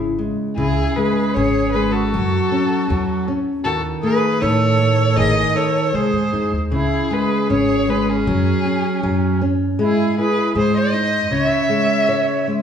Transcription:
Already playing: upright bass G#1, nylon-string guitar C#3 E4
0.19 nylon-string guitar G#3
0.57 upright bass C#2, nylon-string guitar C#3, accordion E4, violin G#4
0.95 nylon-string guitar G#3, accordion G#4, violin B4
1.33 upright bass G#1, accordion G#4, violin C#5
1.37 nylon-string guitar C#4
1.72 nylon-string guitar G#3, accordion G#4, violin B4
1.91 accordion F#4, violin A4
2.14 upright bass F#2, nylon-string guitar F#3
2.52 nylon-string guitar C#4
2.90 upright bass E2, nylon-string guitar F#3
3.28 nylon-string guitar C#4
3.64 upright bass D#2, nylon-string guitar D#3, accordion F#4, violin A4
4.02 nylon-string guitar A3, accordion G#4, violin B4
4.40 upright bass A2, nylon-string guitar D#4, accordion A4, violin C#5
4.79 nylon-string guitar A3
5.16 upright bass G#1, nylon-string guitar D#3, accordion G#4, violin D#5
5.54 nylon-string guitar D#4, accordion A4, violin C#5
5.93 upright bass C3, nylon-string guitar G#3, accordion G#4, violin C5
6.13 upright bass G#2
6.33 upright bass F#2, nylon-string guitar D#4
6.52 upright bass D#2
6.71 upright bass C#2, nylon-string guitar C#3, accordion E4, violin G#4
7.11 nylon-string guitar G#3, accordion G#4, violin B4
7.49 upright bass G#1, nylon-string guitar C#4, accordion G#4, violin C#5
7.88 nylon-string guitar G#3, accordion G#4, violin B4
8.08 accordion C#4, violin G#4
8.27 upright bass F#2, nylon-string guitar F#3
8.65 nylon-string guitar C#4
9.03 upright bass F#2, nylon-string guitar F#3
9.41 nylon-string guitar C#4
9.79 upright bass G#2, nylon-string guitar G#3, accordion E4, violin G#4
10.18 nylon-string guitar E4, accordion G#4, violin B4
10.55 upright bass G#2, nylon-string guitar G#3, accordion G#4, violin C5
10.74 accordion C5, violin D#5
10.93 nylon-string guitar D#4
11.31 upright bass C#2, nylon-string guitar C#3, accordion C#5, violin E5
11.69 nylon-string guitar G#3
12.08 nylon-string guitar C#5
12.47 nylon-string guitar G#3

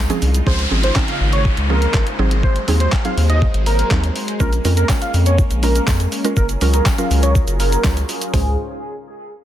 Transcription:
Already playing: supersaw synth C#3 G#3 D#4 F4
0.09 synth pluck F3 G#3 C4 C#4 G#4, closed hi-hat, shaker
0.22 analog synth bass C2, open hi-hat, shaker
0.34 closed hi-hat, shaker
0.46 analog synth bass C#2, supersaw synth C#3 G#3 D#4 F4 C5, synth pluck F3 C4 C#4 G#4, analog synth lead C5, kick, downlifter
0.59 closed hi-hat
0.71 analog synth bass G#1, synth pluck F3 C4 C#4 G#4
0.83 analog synth lead C5, closed hi-hat
0.95 synth pluck F3 C4 C#4 D#4, kick, snare, clap
1.08 analog synth lead F5, closed hi-hat
1.21 analog synth bass G#1
1.33 analog synth lead C#5, closed hi-hat
1.45 kick
1.57 analog synth bass C#2, closed hi-hat
1.70 synth pluck F3 C4 C#4 G#4, analog synth lead A#4
1.82 closed hi-hat
1.94 analog synth bass G#1, kick, snare, clap
2.07 closed hi-hat
2.19 analog synth bass G#1, synth pluck F#3 C4 D#4 G#4, supersaw synth F#3
2.31 closed hi-hat
2.43 analog synth lead C5, kick
2.56 closed hi-hat
2.68 analog synth bass D#2, synth pluck F#3 C4 D#4 G#4, open hi-hat
2.80 analog synth lead C5, closed hi-hat
2.92 kick, snare, clap
3.05 synth pluck F#3 C4 D#4 G#4, analog synth lead F5, closed hi-hat
3.17 analog synth bass D#2, open hi-hat
3.29 analog synth lead D#5, closed hi-hat
3.42 kick
3.54 analog synth bass G#1, closed hi-hat
3.66 analog synth lead A#4, open hi-hat
3.79 closed hi-hat
3.91 analog synth bass D#2, synth pluck F#3 C4 D#4 A#4, kick, snare, clap
4.04 closed hi-hat
4.16 open hi-hat
4.28 closed hi-hat
4.40 analog synth bass A#1, synth pluck G#3 C#4 F4 A#4, supersaw synth A#3 C#4, analog synth lead A#4, kick, shaker
4.53 closed hi-hat, shaker
4.65 analog synth bass F2, synth pluck G#3 C#4 F4 A#4, open hi-hat, shaker
4.77 analog synth lead A#4, closed hi-hat, shaker
4.89 synth pluck G#3 C#4 F4 C#5, kick, snare, clap, tambourine, shaker
5.02 analog synth lead F5, closed hi-hat, shaker
5.14 analog synth bass F2, open hi-hat, shaker
5.26 analog synth lead C#5, closed hi-hat, shaker
5.38 kick, shaker
5.51 analog synth bass A#1, closed hi-hat, shaker
5.63 synth pluck G#3 C#4 F4 A#4, analog synth lead A#4, open hi-hat, shaker
5.76 closed hi-hat, shaker
5.87 analog synth bass F2, kick, snare, clap, tambourine, shaker
6.00 closed hi-hat, shaker
6.12 open hi-hat, shaker
6.24 synth pluck G#3 C#4 F4 A#4, closed hi-hat, shaker
6.37 analog synth bass F#1, supersaw synth F#3 F4 G#4 A#4, analog synth lead A#4, kick, shaker
6.49 closed hi-hat, shaker
6.61 analog synth bass C#2, synth pluck F#3 C#4 F4 A#4, open hi-hat, shaker
6.74 analog synth lead A#4, closed hi-hat, shaker
6.86 kick, snare, clap, tambourine, shaker
6.98 synth pluck F#3 C#4 F4 A#4, analog synth lead F5, closed hi-hat, shaker
7.11 analog synth bass C#2, open hi-hat, shaker
7.23 analog synth lead C#5, closed hi-hat, shaker
7.35 kick, shaker
7.47 analog synth bass F#1, closed hi-hat, shaker
7.60 analog synth lead A#4, open hi-hat, shaker
7.72 closed hi-hat, shaker
7.84 analog synth bass C#2, synth pluck F#3 C#4 F4 C#5, kick, snare, clap, tambourine, shaker
7.97 closed hi-hat, shaker
8.09 open hi-hat, shaker
8.22 closed hi-hat, shaker
8.33 analog synth bass C#2, supersaw synth C#3 C#4 D#4 F4 C5, synth pluck G#3 C#4 F4 C5, analog synth lead G#4, kick, floor tom, open hi-hat, tambourine

